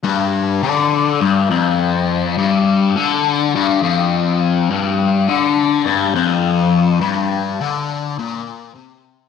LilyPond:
\new Staff \with { instrumentName = "Distorted electric guitar" } { \clef bass \time 4/4 \key c \major \tempo 4 = 103 g,4 d4 g,8 f,4. | g,4 d4 g,8 f,4. | g,4 d4 g,8 f,4. | g,4 d4 bes,4 c4 | }